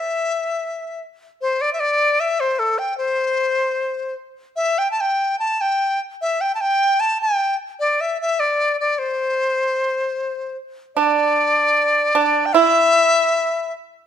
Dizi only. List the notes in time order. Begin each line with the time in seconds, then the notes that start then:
Already playing: E5
1.41 C5
1.61 D5
1.73 E5
1.80 D5
2.20 E5
2.40 C5
2.59 A4
2.78 G5
2.98 C5
4.56 E5
4.78 G5
4.91 A5
5.01 G5
5.39 A5
5.61 G5
6.21 E5
6.41 G5
6.55 A5
6.61 G5
7.00 A5
7.22 G5
7.80 D5
8.01 E5
8.21 E5
8.40 D5
8.80 D5
8.99 C5
10.96 D5
12.46 G5
12.53 E5